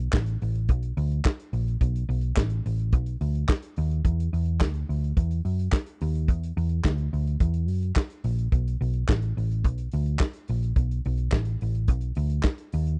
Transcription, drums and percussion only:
0.13 kick loud
0.13 snare loud
0.13 clap medium
0.13 closed hi-hat medium
0.26 closed hi-hat soft
0.41 open hi-hat medium
0.55 closed hi-hat soft
0.68 kick medium
0.68 closed hi-hat medium
0.82 closed hi-hat soft
0.97 open hi-hat medium
1.12 closed hi-hat soft
1.25 kick loud
1.25 snare loud
1.25 clap medium
1.25 closed hi-hat medium
1.39 closed hi-hat soft
1.53 open hi-hat medium
1.68 closed hi-hat soft
1.81 kick medium
1.81 closed hi-hat medium
1.95 closed hi-hat soft
2.10 open hi-hat soft
2.21 closed hi-hat soft
2.37 kick loud
2.37 snare loud
2.37 clap medium
2.37 closed hi-hat medium
2.49 closed hi-hat soft
2.66 open hi-hat medium
2.79 closed hi-hat soft
2.92 kick loud
2.92 closed hi-hat medium
3.06 closed hi-hat soft
3.21 open hi-hat medium
3.35 closed hi-hat soft
3.49 kick loud
3.49 snare loud
3.49 clap medium
3.49 closed hi-hat medium
3.62 closed hi-hat soft
3.76 open hi-hat medium
3.91 closed hi-hat soft
4.05 kick loud
4.05 closed hi-hat medium
4.20 closed hi-hat soft
4.34 open hi-hat medium
4.46 closed hi-hat soft
4.61 kick loud
4.61 snare loud
4.61 clap medium
4.61 closed hi-hat medium
4.73 closed hi-hat soft
4.90 open hi-hat medium
5.04 closed hi-hat soft
5.17 kick loud
5.17 closed hi-hat medium
5.31 closed hi-hat soft
5.45 open hi-hat medium
5.59 closed hi-hat soft
5.72 kick loud
5.72 snare medium
5.72 clap medium
5.72 closed hi-hat medium
5.86 closed hi-hat soft
6.01 open hi-hat medium
6.15 closed hi-hat soft
6.28 kick medium
6.28 closed hi-hat medium
6.43 closed hi-hat soft
6.58 open hi-hat medium
6.69 closed hi-hat soft
6.85 kick loud
6.85 snare loud
6.85 clap medium
6.85 closed hi-hat soft
6.98 closed hi-hat soft
7.13 open hi-hat medium
7.27 closed hi-hat soft
7.40 kick loud
7.40 closed hi-hat medium
7.54 closed hi-hat soft
7.68 open hi-hat medium
7.82 closed hi-hat soft
7.96 kick loud
7.96 snare medium
7.96 clap medium
7.96 closed hi-hat medium
8.10 closed hi-hat soft
8.24 open hi-hat medium
8.38 closed hi-hat soft
8.52 kick medium
8.52 closed hi-hat soft
8.67 closed hi-hat soft
8.82 open hi-hat soft
8.93 closed hi-hat soft
9.09 kick loud
9.09 snare loud
9.09 clap medium
9.09 closed hi-hat medium
9.22 closed hi-hat soft
9.38 open hi-hat medium
9.51 closed hi-hat soft
9.64 kick loud
9.64 closed hi-hat medium
9.78 closed hi-hat soft
9.91 open hi-hat medium
10.06 closed hi-hat soft
10.19 kick loud
10.19 snare loud
10.19 clap medium
10.19 closed hi-hat medium
10.33 closed hi-hat soft
10.48 open hi-hat medium
10.62 closed hi-hat soft
10.76 kick loud
10.76 closed hi-hat medium
10.91 closed hi-hat soft
11.05 open hi-hat soft
11.17 closed hi-hat soft
11.32 kick loud
11.32 snare loud
11.32 clap medium
11.32 closed hi-hat medium
11.45 closed hi-hat soft
11.61 open hi-hat medium
11.75 closed hi-hat soft
11.87 kick loud
11.87 closed hi-hat medium
12.01 closed hi-hat soft
12.15 open hi-hat medium
12.29 closed hi-hat soft
12.43 kick loud
12.43 snare loud
12.43 clap medium
12.43 closed hi-hat medium
12.58 closed hi-hat soft
12.72 open hi-hat medium
12.87 closed hi-hat soft

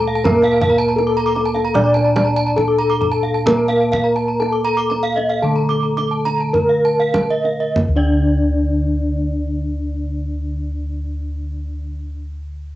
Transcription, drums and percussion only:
0.25 kendang high medium
0.25 kendang low medium
0.42 kendang slap soft
0.62 kendang low medium
0.98 kendang slap soft
1.36 kendang slap soft
1.56 kendang slap soft
1.75 kendang high medium
1.97 kendang slap soft
2.16 kendang slap soft
2.16 kendang high medium
2.58 kendang slap soft
2.58 kendang low medium
3.01 kendang slap soft
3.01 kendang low medium
3.47 kendang high medium
3.47 kendang low medium
3.70 kendang slap soft
3.93 kendang low medium
4.42 kendang slap soft
4.91 kendang slap soft
5.17 kendang slap soft
5.71 kendang slap soft
5.98 kendang slap soft
6.26 kendang slap soft
6.54 kendang slap soft
6.54 kendang low medium
7.14 kendang slap soft
7.14 kendang high medium
7.14 kendang low medium
7.45 kendang slap soft
7.76 kendang low medium

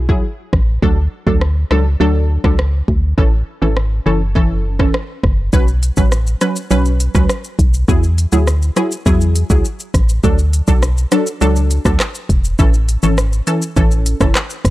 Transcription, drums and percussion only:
0.09 kick loud
0.53 kick medium
0.53 cross-stick medium
0.83 kick loud
1.27 kick medium
1.41 cross-stick medium
1.71 cross-stick medium
2.44 kick loud
2.44 cross-stick medium
2.59 cross-stick loud
2.88 kick medium
3.18 kick loud
3.77 cross-stick medium
4.35 kick medium
4.79 kick loud
4.79 cross-stick medium
4.94 cross-stick loud
5.24 kick medium
5.24 cross-stick medium
5.53 kick loud
5.53 shaker medium
5.68 shaker soft
5.83 closed hi-hat medium
5.83 shaker medium
5.97 kick medium
5.97 shaker medium
6.12 cross-stick medium
6.12 shaker medium
6.27 shaker medium
6.41 cross-stick medium
6.41 closed hi-hat medium
6.41 shaker medium
6.56 shaker medium
6.71 shaker medium
6.85 shaker medium
7.00 closed hi-hat medium
7.00 shaker medium
7.15 kick loud
7.15 cross-stick medium
7.15 shaker medium
7.29 cross-stick loud
7.29 shaker medium
7.44 shaker medium
7.59 kick medium
7.59 closed hi-hat medium
7.59 shaker soft
7.74 shaker medium
7.88 kick loud
7.88 shaker medium
8.03 shaker soft
8.18 closed hi-hat medium
8.18 shaker medium
8.32 shaker medium
8.47 cross-stick medium
8.47 shaker medium
8.62 shaker medium
8.77 cross-stick medium
8.77 closed hi-hat medium
8.77 shaker medium
8.92 shaker medium
9.06 kick medium
9.06 shaker medium
9.21 shaker medium
9.36 closed hi-hat medium
9.36 shaker medium
9.50 kick loud
9.50 shaker medium
9.65 shaker medium
9.80 shaker medium
9.94 kick medium
9.94 cross-stick medium
9.94 closed hi-hat medium
9.94 shaker soft
10.09 shaker medium
10.24 kick loud
10.24 shaker medium
10.39 shaker soft
10.53 closed hi-hat medium
10.53 shaker medium
10.68 kick medium
10.68 shaker medium
10.83 cross-stick medium
10.83 shaker medium
10.98 shaker medium
11.12 cross-stick medium
11.12 closed hi-hat medium
11.12 shaker medium
11.27 shaker medium
11.41 shaker medium
11.56 shaker medium
11.71 closed hi-hat medium
11.71 shaker medium
11.85 kick loud
11.85 cross-stick medium
11.85 shaker medium
12.00 cross-stick loud
12.00 clap loud
12.00 shaker medium
12.15 shaker medium
12.29 kick medium
12.29 closed hi-hat medium
12.29 shaker medium
12.44 shaker medium
12.59 kick loud
12.59 shaker medium
12.74 shaker soft
12.89 closed hi-hat medium
12.89 shaker medium
13.03 shaker medium
13.18 cross-stick loud
13.18 shaker medium
13.33 shaker medium
13.47 closed hi-hat medium
13.47 shaker medium
13.62 shaker medium
13.77 kick medium
13.77 shaker medium
13.91 shaker medium
14.06 closed hi-hat medium
14.06 shaker medium
14.21 kick loud
14.21 cross-stick medium
14.21 shaker medium
14.35 cross-stick loud
14.35 clap loud
14.35 shaker medium
14.50 shaker medium
14.65 kick medium
14.65 cross-stick medium
14.65 closed hi-hat medium
14.65 shaker soft

